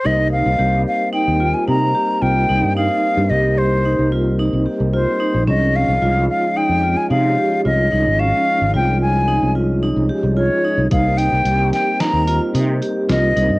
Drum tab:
HH |----------|----------|----------|----------|
SD |----------|----------|----------|----------|
BD |----------|----------|----------|----------|

HH |xxxxxxxxxx|
SD |---oo---o-|
BD |o---------|